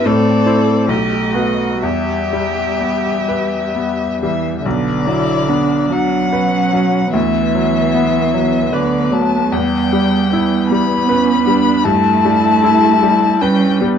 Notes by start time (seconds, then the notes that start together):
0.06 A2 C4 A4 D5
0.46 E4 C5
0.88 B1 A3 G4 D#5
1.34 B3 F#4 B4
1.83 E2 G3 G4 E5
2.33 G3
2.81 B3
3.28 B4
3.75 B3
4.22 E3 G3 E5
4.59 E5
4.65 B1 D3 B3 D5
5.07 F#3 E4
5.49 B3 D4
5.91 F#3 F#5
6.33 C#4 B4
6.73 F#3
7.13 D2 E3 B3 E5
7.55 F#3
7.95 B3
8.34 F#3
8.73 D3 B4 D5
9.11 F#3 A3 A5
9.51 E2 G3 G5
9.93 G3
10.32 B3 E4
10.70 G3 B3 B5
11.08 C#4 B4
11.46 G3 D4
11.84 G2 A3 E4 A5
12.25 G3
12.64 E4
13.03 G3
13.40 G3 C#4 B4 G5
13.80 G3 B3